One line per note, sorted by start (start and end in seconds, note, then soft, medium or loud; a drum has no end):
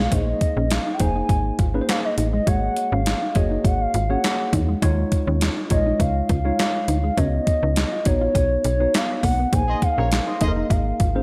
0.05 0.14 F5 medium
0.11 0.34 A#1 loud
0.11 0.82 A#3 medium
0.11 0.21 A#3 medium
0.11 0.82 D#4 medium
0.11 0.82 G#4 medium
0.11 0.82 C5 medium
0.11 0.73 D#5 loud
0.11 kick loud
0.11 closed hi-hat loud
0.41 muted clean electric guitar stroke soft
0.41 kick medium
0.41 closed hi-hat medium
0.57 0.79 A#1 loud
0.57 0.65 C#4 medium
0.71 0.95 F5 loud
0.71 snare loud
0.71 clap loud
0.71 closed hi-hat medium
0.86 0.94 D#4 medium
0.94 1.02 G5 medium
0.99 1.23 F1 loud
0.99 1.58 A#3 medium
0.99 1.58 D#4 medium
0.99 1.58 G#4 medium
0.99 1.58 C5 medium
0.99 1.59 G#5 loud
0.99 muted clean electric guitar stroke soft
0.99 kick loud
0.99 closed hi-hat medium
1.16 1.24 D#4 medium
1.29 1.52 G#1 loud
1.29 muted clean electric guitar stroke soft
1.29 kick loud
1.29 closed hi-hat medium
1.59 1.81 G#1 medium
1.59 1.68 F4 medium
1.59 kick medium
1.59 closed hi-hat medium
1.74 2.32 A#3 medium
1.74 1.82 C#4 medium
1.74 2.32 D#4 medium
1.74 2.33 G#4 medium
1.74 1.81 B4 medium
1.81 2.36 C5 medium
1.88 2.03 F5 loud
1.88 muted clean electric guitar stroke soft
1.88 snare loud
1.88 clap medium
1.88 closed hi-hat loud
2.05 2.32 D#5 medium
2.18 2.40 A1 medium
2.18 2.27 D#4 medium
2.18 closed hi-hat medium
2.33 2.41 G#3 medium
2.33 2.49 D#5 medium
2.47 2.69 G#1 loud
2.47 2.56 G#3 medium
2.47 3.17 A#3 medium
2.47 3.17 F#4 medium
2.47 3.18 G#4 medium
2.47 3.18 C#5 medium
2.47 2.94 F#5 loud
2.47 kick loud
2.47 closed hi-hat loud
2.77 muted clean electric guitar stroke soft
2.77 closed hi-hat medium
2.92 3.15 G#1 loud
2.92 3.00 C#4 medium
2.92 3.37 F5 loud
3.06 snare loud
3.06 clap medium
3.06 closed hi-hat loud
3.22 3.30 D#4 medium
3.35 3.58 F#1 medium
3.35 3.93 A#3 medium
3.35 3.94 F#4 medium
3.35 3.94 G#4 medium
3.35 3.94 C#5 medium
3.35 3.65 D#5 medium
3.35 muted clean electric guitar stroke soft
3.35 kick loud
3.35 closed hi-hat medium
3.51 3.59 D#4 medium
3.65 3.87 G#1 medium
3.65 3.82 F#5 medium
3.65 muted clean electric guitar stroke soft
3.65 kick loud
3.65 closed hi-hat medium
3.81 4.12 F5 medium
3.94 4.17 G#1 loud
3.94 4.03 F4 medium
3.94 closed hi-hat medium
4.10 4.68 A#3 medium
4.10 4.18 C#4 medium
4.10 4.68 F#4 medium
4.10 4.68 G#4 medium
4.10 4.68 C#5 medium
4.10 4.53 F#5 loud
4.24 muted clean electric guitar stroke soft
4.24 snare loud
4.24 clap medium
4.24 closed hi-hat loud
4.53 4.75 E2 medium
4.53 4.62 D#4 medium
4.53 kick medium
4.53 closed hi-hat medium
4.69 4.77 G#3 medium
4.82 5.05 D#2 loud
4.82 5.53 G#3 medium
4.82 4.91 D#4 medium
4.82 5.53 D#4 medium
4.82 5.53 F4 medium
4.82 5.53 C#5 loud
4.82 kick loud
4.82 closed hi-hat medium
5.12 muted clean electric guitar stroke soft
5.12 kick loud
5.12 closed hi-hat medium
5.27 5.50 D#2 loud
5.27 5.35 C#4 medium
5.41 snare loud
5.41 clap medium
5.41 closed hi-hat loud
5.57 5.65 D#4 medium
5.70 5.93 A#1 medium
5.70 5.77 G3 medium
5.70 6.29 D#4 medium
5.70 6.29 F4 medium
5.70 6.29 C#5 medium
5.70 6.02 D#5 medium
5.70 muted clean electric guitar stroke soft
5.70 kick loud
5.70 closed hi-hat medium
5.77 6.32 G#3 medium
5.86 5.94 D#4 medium
6.00 6.22 C#2 medium
6.00 6.58 F5 medium
6.00 muted clean electric guitar stroke soft
6.00 kick loud
6.00 closed hi-hat medium
6.29 6.52 C#2 medium
6.29 6.39 F4 medium
6.29 kick loud
6.29 closed hi-hat medium
6.45 7.03 G#3 medium
6.45 6.53 C#4 medium
6.45 7.03 D#4 medium
6.45 7.03 F4 medium
6.45 7.03 C#5 medium
6.59 7.19 F5 loud
6.59 muted clean electric guitar stroke soft
6.59 snare loud
6.59 clap medium
6.59 closed hi-hat medium
6.88 7.11 D2 medium
6.88 6.97 D#4 medium
6.88 closed hi-hat medium
7.04 7.12 G#3 medium
7.17 7.40 C#2 loud
7.17 7.88 B3 medium
7.17 7.26 C#4 medium
7.17 7.88 D#4 medium
7.17 7.88 F#4 medium
7.17 7.88 C#5 medium
7.17 8.08 D#5 loud
7.17 kick loud
7.17 closed hi-hat medium
7.47 muted clean electric guitar stroke soft
7.47 kick medium
7.47 closed hi-hat medium
7.63 7.85 C#2 loud
7.63 7.71 D#4 medium
7.76 snare loud
7.76 clap medium
7.76 closed hi-hat loud
7.92 8.00 F4 medium
8.05 8.28 A#1 medium
8.05 8.64 B3 medium
8.05 8.64 D#4 medium
8.05 8.64 F#4 medium
8.05 8.96 C#5 loud
8.05 8.64 C#5 medium
8.05 muted clean electric guitar stroke soft
8.05 kick loud
8.05 closed hi-hat medium
8.21 8.29 F4 medium
8.35 8.58 B1 medium
8.35 muted clean electric guitar stroke soft
8.35 kick medium
8.35 closed hi-hat medium
8.64 8.87 B1 loud
8.64 8.74 D#4 medium
8.64 closed hi-hat medium
8.80 9.38 B3 medium
8.80 8.88 B3 medium
8.80 9.38 D#4 medium
8.80 9.38 F#4 medium
8.80 9.39 C#5 medium
8.94 9.25 F5 loud
8.94 muted clean electric guitar stroke soft
8.94 snare loud
8.94 clap medium
8.94 closed hi-hat loud
9.23 9.46 B1 medium
9.23 9.33 A#3 medium
9.23 9.55 F#5 loud
9.23 kick medium
9.23 open hi-hat medium
9.39 9.47 B3 medium
9.53 9.75 A#1 loud
9.53 10.23 A#3 medium
9.53 9.62 A#3 medium
9.53 10.23 D#4 medium
9.53 10.23 G#4 medium
9.53 10.24 C5 medium
9.53 9.82 G#5 loud
9.53 kick loud
9.53 closed hi-hat loud
9.68 9.80 G#4 medium
9.68 9.80 C5 medium
9.68 9.80 D#5 medium
9.82 10.43 F5 loud
9.82 muted clean electric guitar stroke soft
9.82 kick medium
9.82 closed hi-hat medium
9.98 10.20 A#1 loud
9.98 10.06 C#4 medium
9.98 10.09 F#4 medium
9.98 10.09 A#4 medium
9.98 10.09 C#5 medium
10.12 snare loud
10.12 clap medium
10.12 closed hi-hat loud
10.27 10.35 D#4 medium
10.27 10.38 G#4 medium
10.27 10.38 C5 medium
10.27 10.38 D#5 medium
10.41 10.64 F1 loud
10.41 10.99 A#3 medium
10.41 10.99 D#4 medium
10.41 10.99 G#4 medium
10.41 10.51 G#4 medium
10.41 10.48 A4 medium
10.41 10.51 C5 medium
10.41 10.51 D#5 medium
10.41 10.72 D#5 medium
10.41 muted clean electric guitar stroke soft
10.41 kick loud
10.41 closed hi-hat medium
10.48 11.03 A#4 medium
10.56 10.64 D#4 medium
10.70 10.93 G#1 medium
10.70 11.23 F5 medium
10.70 muted clean electric guitar stroke soft
10.70 kick loud
10.70 closed hi-hat medium
11.00 11.22 G#1 medium
11.00 11.09 F4 medium
11.00 kick medium
11.00 closed hi-hat medium
11.15 11.23 A#3 medium
11.15 11.23 C#4 medium
11.15 11.23 D#4 medium
11.15 11.23 G#4 medium
11.15 11.23 C5 medium